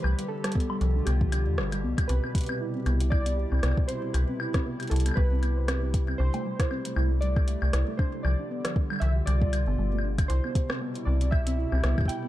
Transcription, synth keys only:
X:1
M:4/4
L:1/8
Q:"Swing 16ths" 1/4=117
K:C
V:1 name="Synth keys"
B A3 G3 z | B3 z d3 c | B2 z A B3 z | c3 z d3 c |
d2 z e d3 z | c2 z d e3 g |]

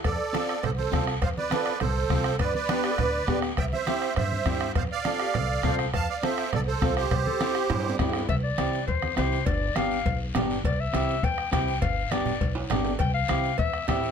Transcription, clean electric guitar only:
X:1
M:4/4
L:1/8
Q:1/4=204
K:C
V:1 name="Clean electric guitar"
z2 [CFA] z3 [CFA] z | z2 [CFA] z3 [CFA] z | z2 [B,DG] z3 [B,DG] z | z2 [CEG] z3 [CEG] z |
z2 [CFA] z3 [CFA] z | z2 [CFA] z3 [CFA] z | z2 [CEG] z3 [CEG] z | z2 [CEG] z3 [CEG] z |
z2 [B,DG] z3 [B,DG] z | z2 [CEG] z3 [CEG] z | z2 [B,DG] z3 [B,DG] z | z2 [CEG] z3 [CEG] z |]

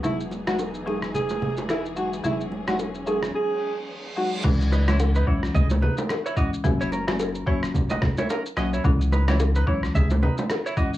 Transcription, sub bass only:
X:1
M:4/4
L:1/16
Q:"Swing 16ths" 1/4=109
K:C#dor
V:1 name="Sub bass" clef=bass
E,,,16 | E,,,8 z8 | C,,6 B,,,2 C,,3 z4 z | F,,,6 F,,,2 F,,,3 z3 B,,,2 |
C,,6 B,,,2 C,,3 z4 z |]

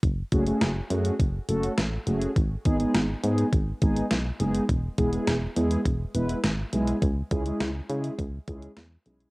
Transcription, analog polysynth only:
X:1
M:4/4
L:1/16
Q:1/4=103
K:F#dor
V:1 name="Analog polysynth"
z2 [A,CFG] [A,CFG]2 z [A,CFG]2 z2 [A,CFA]2 z2 [A,CFG]2 | z2 [G,B,DG] [G,B,DG]2 z [G,B,DG]2 z2 [G,B,DG]2 z2 [G,B,DG]2 | z2 [G,B,EG] [G,B,EG]2 z [G,B,EG]2 z2 [G,B,EB]2 z2 [G,B,EG]2 | z2 [G,CEG] [G,CEG]2 z [G,CEG]2 z2 [G,CEG]2 z2 [G,CEG]2 |]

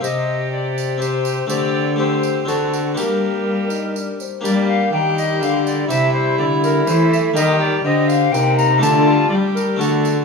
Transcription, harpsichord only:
X:1
M:3/4
L:1/8
Q:1/4=123
K:Gm
V:1 name="Harpsichord"
[CG]4 [CG]2 | [A,CG]2 [A,CG]2 [CD^F]2 | [B,DG]6 | [B,DG]6 |
[CG]6 | [B,G]6 | [A,DG]4 [A,D^F]2 |]
V:2 name="Harpsichord" clef=bass
C,6 | D,4 D,2 | G,4- G, z | G,2 E,2 D,2 |
C,2 D,2 =E,2 | E,2 D,2 C,2 | D,2 G,2 D,2 |]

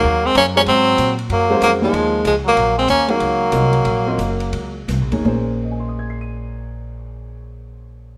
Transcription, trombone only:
X:1
M:4/4
L:1/8
Q:"Swing" 1/4=181
K:Ebdor
V:1 name="Trombone" clef=bass
G, A, B, B, G,3 z | G,2 G, F,3 F, G,- | G, A, B, G,4- G,- | G,6 z2 |
z8 | z8 |]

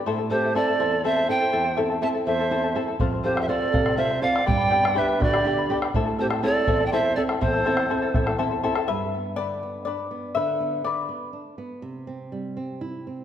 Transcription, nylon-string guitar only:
X:1
M:6/8
L:1/8
Q:3/8=82
K:Gmix
V:1 name="Nylon-string guitar"
A,, [CEA] [CEA] E,, [CEA] [CEA] | E,, [CEA] [CEA] E,, [CEA] [CEA] | F,, [CFA] [CFA] C, [CFA] [CFA] | G,, [B,DG] [B,DG] D, [B,DG] [B,DG] |
A,, [CEA] [CEA] E,, [CEA] [CEA] | E,, [CEA] [CEA] E,, [CEA] [CEA] | G,, B, D, B, D B, | D, B, D, B, D B, |
C, C G, C E C |]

